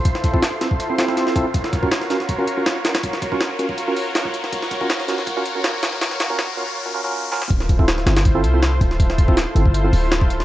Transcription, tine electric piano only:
0.34 0.42 C4 medium
0.34 0.42 E4 medium
0.34 0.42 F4 medium
0.34 0.42 A4 loud
0.61 0.67 C4 medium
0.61 0.67 E4 medium
0.61 0.67 F4 medium
0.61 0.67 A4 medium
0.89 0.95 C4 medium
0.89 0.95 E4 medium
0.89 0.95 F4 medium
0.89 0.95 A4 medium
0.98 1.04 C4 medium
0.98 1.04 E4 medium
0.98 1.04 F4 medium
0.98 1.04 A4 medium
1.08 1.34 C4 medium
1.08 1.34 E4 medium
1.08 1.34 F4 medium
1.08 1.34 A4 medium
1.36 1.45 C4 medium
1.36 1.45 E4 medium
1.36 1.45 F4 medium
1.36 1.45 A4 medium
1.83 1.88 C#4 medium
1.83 1.88 F4 medium
1.83 1.88 F#4 medium
1.83 1.88 A#4 loud
2.10 2.16 C#4 medium
2.10 2.16 F4 medium
2.10 2.16 F#4 medium
2.10 2.16 A#4 medium
2.38 2.44 C#4 medium
2.38 2.44 F4 medium
2.38 2.44 F#4 medium
2.38 2.44 A#4 loud
2.57 2.62 C#4 medium
2.57 2.62 F4 medium
2.57 2.63 F#4 medium
2.57 2.62 A#4 medium
3.32 3.40 C#4 medium
3.32 3.40 F4 medium
3.32 3.40 F#4 medium
3.32 3.40 A#4 medium
3.59 3.65 C#4 medium
3.59 3.65 F4 medium
3.59 3.65 F#4 medium
3.59 3.65 A#4 medium
3.88 3.93 C#4 medium
3.88 3.93 F4 medium
3.88 3.93 F#4 medium
3.88 3.93 A#4 medium
4.81 4.86 C#4 medium
4.81 4.86 F4 medium
4.81 4.86 F#4 medium
4.81 4.86 A#4 loud
5.08 5.14 C#4 medium
5.08 5.14 F4 medium
5.08 5.14 F#4 medium
5.08 5.14 A#4 medium
5.37 5.42 C#4 loud
5.37 5.42 F4 medium
5.37 5.42 F#4 medium
5.37 5.42 A#4 loud
5.55 5.61 C#4 medium
5.55 5.61 F4 medium
5.55 5.61 F#4 medium
5.55 5.61 A#4 medium
6.30 6.38 C#4 medium
6.30 6.38 F4 medium
6.30 6.38 F#4 medium
6.30 6.38 A#4 loud
6.57 6.63 C#4 medium
6.57 6.63 F4 medium
6.57 6.63 F#4 medium
6.57 6.63 A#4 medium
6.86 6.91 C#4 medium
6.86 6.91 F4 medium
6.86 6.91 F#4 medium
6.86 6.91 A#4 medium
6.94 7.00 C#4 medium
6.94 7.00 F4 medium
6.94 7.00 F#4 medium
6.94 7.00 A#4 medium
7.04 7.30 C#4 medium
7.04 7.30 F4 medium
7.04 7.30 F#4 medium
7.04 7.30 A#4 loud
7.32 7.41 C#4 medium
7.32 7.41 F4 medium
7.32 7.41 F#4 medium
7.32 7.41 A#4 loud
7.79 7.84 C4 medium
7.79 7.84 E4 medium
7.79 7.84 F4 medium
7.79 7.84 A4 loud
8.06 8.12 C4 medium
8.06 8.12 E4 medium
8.06 8.12 F4 medium
8.06 8.12 A4 medium
8.35 8.40 C4 loud
8.35 8.40 E4 medium
8.35 8.40 F4 medium
8.35 8.40 A4 loud
8.54 8.59 C4 medium
8.54 8.59 E4 medium
8.54 8.59 F4 medium
8.54 8.59 A4 medium
9.28 9.36 C4 medium
9.28 9.36 E4 medium
9.28 9.36 F4 medium
9.28 9.36 A4 loud
9.56 9.61 C4 medium
9.56 9.61 E4 medium
9.56 9.61 F4 medium
9.56 9.61 A4 medium
9.84 9.89 C4 medium
9.84 9.89 E4 medium
9.84 9.89 F4 medium
9.84 9.89 A4 medium

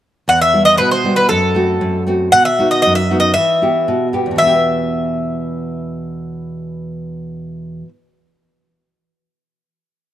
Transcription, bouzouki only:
0.29 0.40 F#5 medium
0.41 0.65 E5 medium
0.65 0.75 D#5 medium
0.77 0.91 B4 medium
0.77 0.80 C5 medium
0.91 1.16 C5 medium
1.16 1.28 B4 medium
1.29 2.02 A4 medium
2.32 2.45 F#5 medium
2.45 2.71 E5 medium
2.71 2.81 D#5 medium
2.82 2.95 D#5 medium
2.95 3.19 E5 medium
3.20 3.33 D#5 medium
3.34 4.07 E5 medium
4.38 7.88 E5 medium

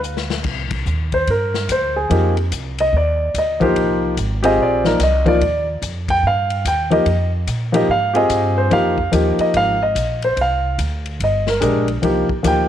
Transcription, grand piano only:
1.14 1.27 C5 medium
1.30 1.67 A#4 medium
1.72 1.96 C5 medium
1.96 2.34 G#4 medium
2.10 2.33 F3 medium
2.10 2.33 A#3 soft
2.10 2.34 D#4 soft
2.10 2.34 G4 medium
2.80 2.93 D#5 medium
2.97 3.33 D5 medium
3.38 3.62 D#5 medium
3.60 4.13 F3 medium
3.60 4.14 A#3 medium
3.60 4.14 D#4 medium
3.60 4.14 G4 medium
3.60 4.00 C5 medium
4.43 4.82 C4 medium
4.43 4.82 F4 medium
4.43 4.81 G4 medium
4.43 4.82 G#4 medium
4.43 4.58 D#5 medium
4.62 4.99 D5 medium
4.84 4.98 F3 medium
4.84 4.98 A#3 medium
4.84 4.98 D#4 medium
4.84 4.98 A#4 medium
5.03 5.27 D#5 medium
5.25 5.39 F3 medium
5.25 5.39 A#3 medium
5.25 5.39 D#4 medium
5.25 5.40 F4 medium
5.25 5.65 D5 medium
6.10 6.24 G5 medium
6.27 6.64 F5 medium
6.68 6.92 G5 medium
6.90 7.04 F3 medium
6.90 7.04 A#3 medium
6.90 7.05 D#4 medium
6.90 7.05 G4 medium
6.90 7.30 D#5 medium
7.72 7.86 F3 medium
7.72 7.87 A#3 medium
7.72 7.87 D#4 medium
7.72 7.87 G4 medium
7.72 7.89 D#5 medium
7.91 8.15 F5 medium
8.14 8.68 C4 medium
8.14 8.68 F4 medium
8.14 8.67 G4 medium
8.14 8.69 G#4 medium
8.14 8.54 D#5 medium
8.58 8.71 C5 medium
8.70 8.94 F3 medium
8.70 8.95 A#3 medium
8.70 8.95 D#4 medium
8.70 8.95 G4 medium
8.70 9.11 F5 medium
9.12 9.75 F3 medium
9.12 9.75 A#3 medium
9.12 9.75 D#4 medium
9.12 9.76 G4 medium
9.41 9.54 D#5 medium
9.57 9.81 F5 medium
9.83 10.20 D#5 medium
10.24 10.38 C5 medium
10.41 10.78 F5 medium
11.24 11.47 D#5 medium
11.49 11.61 A#4 medium
11.60 11.84 G#3 medium
11.60 11.85 D4 medium
11.60 11.85 G4 medium
11.60 11.86 A#4 medium
12.02 12.26 F3 medium
12.02 12.26 A#3 soft
12.02 12.26 D#4 medium
12.02 12.27 G4 medium
12.43 12.67 F3 medium
12.43 12.67 A#3 soft
12.43 12.67 D#4 soft
12.43 12.68 G4 medium
12.47 12.68 G5 medium

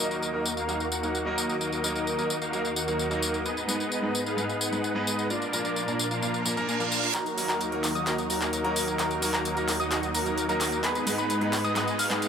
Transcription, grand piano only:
0.00 0.31 F#3 medium
0.00 0.31 A#3 medium
0.00 0.31 D#4 medium
0.00 0.31 A#4 medium
0.33 0.44 F#3 medium
0.33 0.45 A#3 medium
0.33 0.45 D#4 medium
0.33 0.45 A#4 medium
0.68 0.75 F#3 medium
0.68 0.75 A#3 medium
0.68 0.75 D#4 medium
0.68 0.75 A#4 medium
1.02 1.23 F#3 medium
1.02 1.23 A#3 medium
1.02 1.23 D#4 medium
1.02 1.24 A#4 medium
1.25 1.80 F#3 medium
1.25 1.81 A#3 medium
1.25 1.81 D#4 medium
1.25 1.81 A#4 loud
1.83 2.15 F#3 medium
1.83 2.15 A#3 medium
1.83 2.16 D#4 medium
1.83 2.16 A#4 medium
2.18 2.29 F#3 medium
2.18 2.29 A#3 medium
2.18 2.29 D#4 medium
2.18 2.29 A#4 medium
2.52 2.59 F#3 medium
2.52 2.60 A#3 medium
2.52 2.60 D#4 medium
2.52 2.60 A#4 medium
2.87 3.08 F#3 medium
2.87 3.08 A#3 medium
2.87 3.08 D#4 medium
2.87 3.08 A#4 medium
3.10 3.44 F#3 medium
3.10 3.44 A#3 medium
3.10 3.44 D#4 medium
3.10 3.44 A#4 loud
3.68 4.00 G#2 medium
3.68 4.00 G#3 medium
3.68 4.00 B3 medium
3.68 4.00 D#4 medium
3.68 4.00 B4 medium
4.02 4.14 G#2 medium
4.02 4.14 G#3 medium
4.02 4.14 B3 medium
4.02 4.14 D#4 medium
4.02 4.14 B4 medium
4.37 4.44 G#2 medium
4.37 4.44 G#3 medium
4.37 4.44 B3 medium
4.37 4.45 D#4 medium
4.37 4.45 B4 medium
4.71 4.92 G#2 medium
4.71 4.92 G#3 medium
4.71 4.92 B3 medium
4.71 4.93 D#4 medium
4.71 4.93 B4 medium
4.95 5.28 G#2 medium
4.95 5.28 G#3 medium
4.95 5.28 B3 medium
4.95 5.29 D#4 medium
4.95 5.29 B4 loud
5.52 5.85 A#2 medium
5.52 5.85 F3 medium
5.52 5.85 A#3 medium
5.52 5.85 D4 medium
5.52 5.85 A#4 medium
5.87 5.98 A#2 medium
5.87 5.98 F3 medium
5.87 5.98 A#3 medium
5.87 5.99 D4 medium
5.87 5.99 A#4 medium
6.22 6.29 A#2 medium
6.22 6.29 F3 medium
6.22 6.29 A#3 medium
6.22 6.29 D4 medium
6.22 6.29 A#4 medium
6.45 6.55 A#2 medium
6.45 6.55 F3 medium
6.45 6.55 A#3 medium
6.45 6.55 D4 medium
6.45 6.55 A#4 medium
6.56 6.77 A#2 medium
6.56 6.77 F3 medium
6.56 6.77 A#3 medium
6.56 6.77 D4 medium
6.56 6.77 A#4 loud
6.79 7.13 A#2 medium
6.79 7.13 F3 medium
6.79 7.13 A#3 medium
6.79 7.13 D4 medium
6.79 7.13 A#4 medium
7.37 7.69 F#3 medium
7.37 7.69 A#3 medium
7.37 7.70 D#4 medium
7.37 7.70 A#4 medium
7.72 7.83 F#3 medium
7.72 7.83 A#3 medium
7.72 7.83 D#4 medium
7.72 7.83 A#4 medium
8.06 8.13 F#3 medium
8.06 8.14 A#3 medium
8.06 8.14 D#4 medium
8.06 8.14 A#4 medium
8.41 8.61 F#3 medium
8.41 8.62 A#3 medium
8.41 8.62 D#4 medium
8.41 8.62 A#4 medium
8.63 9.19 F#3 medium
8.63 9.19 A#3 medium
8.63 9.20 D#4 medium
8.63 9.20 A#4 loud
9.22 9.54 F#3 medium
9.22 9.54 A#3 medium
9.22 9.54 D#4 medium
9.22 9.54 A#4 medium
9.56 9.67 F#3 medium
9.56 9.68 A#3 medium
9.56 9.68 D#4 medium
9.56 9.68 A#4 medium
9.91 9.98 F#3 medium
9.91 9.98 A#3 medium
9.91 9.98 D#4 medium
9.91 9.99 A#4 medium
10.25 10.46 F#3 medium
10.25 10.46 A#3 medium
10.25 10.46 D#4 medium
10.25 10.47 A#4 medium
10.48 10.82 F#3 medium
10.48 10.82 A#3 medium
10.48 10.82 D#4 medium
10.48 10.83 A#4 loud
11.06 11.38 G#2 medium
11.06 11.38 G#3 medium
11.06 11.39 B3 medium
11.06 11.39 D#4 medium
11.06 11.39 B4 medium
11.41 11.52 G#2 medium
11.41 11.52 G#3 medium
11.41 11.52 B3 medium
11.41 11.52 D#4 medium
11.41 11.53 B4 medium
11.75 11.83 G#2 medium
11.75 11.83 G#3 medium
11.75 11.83 B3 medium
11.75 11.83 D#4 medium
11.75 11.83 B4 medium
12.10 12.28 G#2 medium
12.10 12.28 G#3 medium
12.10 12.28 B3 medium
12.10 12.28 D#4 medium
12.10 12.28 B4 medium

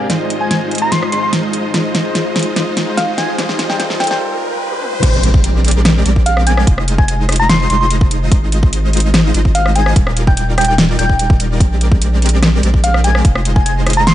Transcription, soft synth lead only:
0.41 0.47 G#5 medium
0.51 0.58 G#5 medium
0.82 0.90 A#5 medium
0.92 1.10 C6 medium
1.12 1.19 C6 medium
1.23 1.29 C6 medium
2.97 3.12 F5 medium
3.18 3.32 G#5 medium
3.70 3.76 G5 medium
3.79 3.86 G5 medium
4.00 4.07 G5 medium
4.11 4.17 G5 medium
6.26 6.40 F5 loud
6.47 6.61 G#5 medium
6.98 7.05 G#5 medium
7.08 7.15 G#5 medium
7.40 7.48 A#5 medium
7.49 7.68 C6 medium
7.70 7.77 C6 medium
7.81 7.87 C6 medium
9.55 9.69 F5 loud
9.76 9.90 G#5 medium
10.27 10.34 G5 medium
10.37 10.44 G5 medium
10.58 10.65 G5 medium
10.68 10.75 G5 medium
10.99 11.30 G5 medium
12.84 12.98 F5 loud
13.04 13.19 G#5 medium
13.56 13.62 G#5 medium
13.66 13.73 G#5 medium
13.97 14.05 A#5 medium
14.07 14.14 C6 loud

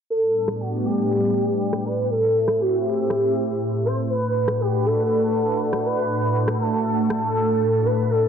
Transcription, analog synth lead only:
0.10 0.62 A4 loud
0.60 0.85 F#4 medium
0.85 1.87 G4 loud
1.85 2.12 B4 loud
2.10 2.62 A4 loud
2.60 2.87 F#4 medium
2.85 3.85 G4 loud
3.85 3.96 C5 loud
4.10 4.62 B4 loud
4.60 4.87 G4 loud
4.85 5.85 A4 loud
5.85 6.62 B4 loud
6.60 7.10 A4 loud
7.10 7.87 A4 loud
7.85 8.12 B4 loud
8.10 8.28 A4 loud

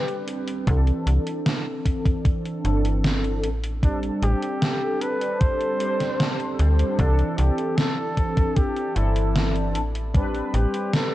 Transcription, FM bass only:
0.67 0.91 C2 loud
1.06 1.19 C2 medium
2.65 3.45 G1 medium
3.44 4.10 A1 medium
4.22 4.35 A1 medium
6.59 6.84 D2 medium
6.99 7.23 C2 loud
7.39 7.51 C2 medium
8.96 9.77 G1 medium
9.75 10.42 A1 medium
10.54 10.66 A1 medium

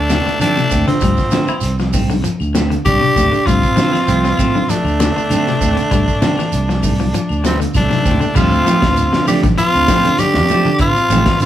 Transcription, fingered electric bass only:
0.00 0.19 D2 medium
0.26 muted fingered electric bass stroke soft
0.40 0.53 D3 medium
0.71 0.84 D2 medium
0.87 0.99 D3 medium
1.02 1.15 D2 medium
1.32 1.45 D3 medium
1.48 muted fingered electric bass stroke soft
1.63 2.23 C2 medium
2.41 2.75 D2 medium
2.86 2.98 C2 medium
3.16 3.29 D2 medium
3.47 3.59 D2 medium
3.77 3.89 D3 loud
4.08 4.32 C2 loud
4.84 5.08 D2 loud
5.16 muted fingered electric bass stroke soft
5.30 5.43 D3 medium
5.61 5.73 D2 medium
5.78 5.88 D3 medium
5.91 6.04 D2 medium
6.22 6.35 D3 medium
6.38 muted fingered electric bass stroke soft
6.54 7.13 C2 medium
7.30 7.65 D2 medium
7.75 7.88 C2 medium
8.06 8.18 D2 medium
8.36 8.60 D2 medium
8.82 9.06 D2 medium
9.14 9.37 D3 medium
9.44 9.55 A1 loud
9.58 muted fingered electric bass stroke soft
9.75 9.86 D2 medium
10.05 10.36 D3 medium
10.35 10.46 F2 loud
10.65 10.89 D3 medium
11.10 11.23 A1 loud
11.40 11.46 D3 medium

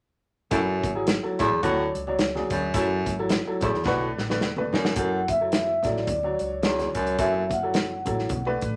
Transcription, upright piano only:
0.51 0.85 F#3 medium
0.51 0.85 E4 medium
0.51 0.85 A4 medium
0.95 1.13 F#3 medium
0.95 1.14 E4 medium
0.95 1.14 G#4 medium
1.23 1.52 F#3 medium
1.23 1.52 E4 medium
1.23 1.52 A4 medium
1.63 1.97 F#3 medium
1.63 1.97 D4 medium
1.63 1.97 C#5 medium
2.08 2.25 F#3 medium
2.08 2.25 D4 medium
2.08 2.25 C#5 medium
2.35 2.64 F#3 medium
2.35 2.64 D4 medium
2.35 2.64 G#4 medium
2.75 3.08 F#3 medium
2.75 3.08 E4 medium
2.75 3.08 A4 medium
3.19 3.37 F#3 medium
3.19 3.37 E4 medium
3.19 3.37 A4 medium
3.47 3.76 F#3 medium
3.47 3.76 E4 medium
3.47 3.76 A4 medium
3.87 4.20 A3 medium
3.87 4.20 D4 medium
3.87 4.20 B4 medium
4.30 4.48 A3 medium
4.30 4.48 D4 medium
4.30 4.48 B4 medium
4.58 4.86 A3 medium
4.58 4.87 D4 medium
4.58 4.87 B4 medium
4.96 5.30 F#3 medium
4.96 5.30 E4 medium
4.96 5.30 A4 medium
5.41 5.70 F#3 medium
5.41 5.70 E4 medium
5.41 5.70 A4 medium
5.85 6.08 F#3 medium
5.85 6.08 E4 medium
5.85 6.08 A4 medium
6.24 6.53 F#3 medium
6.24 6.53 D4 medium
6.24 6.53 C#5 medium
6.64 7.05 F#3 medium
6.64 7.05 D4 medium
6.64 7.05 C#5 medium
7.19 7.52 F#3 medium
7.19 7.53 E4 medium
7.19 7.53 A4 medium
7.63 7.92 F#3 medium
7.63 7.92 E4 medium
7.63 7.92 A4 medium
8.07 8.30 F#3 medium
8.07 8.30 E4 medium
8.07 8.30 A4 medium
8.46 8.75 A3 medium
8.46 8.75 D4 medium
8.46 8.75 B4 medium

